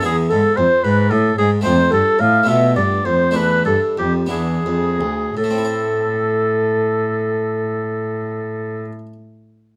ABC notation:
X:1
M:6/8
L:1/8
Q:3/8=60
K:Am
V:1 name="Flute"
^G A c B A G | c A f e d c | B A G ^G3 | A6- |
A6 |]
V:2 name="Oboe"
^G A c B A G | c A f e d c | B A G ^G3 | A6- |
A6 |]
V:3 name="Harpsichord"
[B,E^G]6 | [A,CF]3 [A,B,F]3 | [A,DE]3 [B,DE]3 | [A,,A,CEc]6- |
[A,,A,CEc]6 |]
V:4 name="Harpsichord" clef=bass
E,, ^G,, F,, G,, A,, G,, | F,, G,, A,, B,, G,, F,, | E,, G,, F,, E,, F,, D,, | z6 |
z6 |]
V:5 name="Cello" clef=bass
E,, ^G,, F,, G,, A,, G,, | F,, G,, A,, B,, G,, F,, | E,, G,, F,, E,, F,, D,, | A,,6- |
A,,6 |]